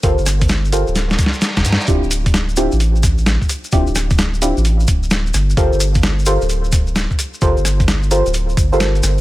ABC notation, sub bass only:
X:1
M:4/4
L:1/16
Q:"Swing 16ths" 1/4=130
K:Gdor
V:1 name="Sub bass" clef=bass
G,,, G,,,6 D,,,3 z3 F,,, G,, z | D,,, D,,,6 A,,,6 z3 | D,,, D,,,6 A,,,3 D,,,4 G,,,2 | G,,, G,,,6 D,,,6 z3 |
G,,, G,,,6 D,,,3 G,,,4 G,,,2 |]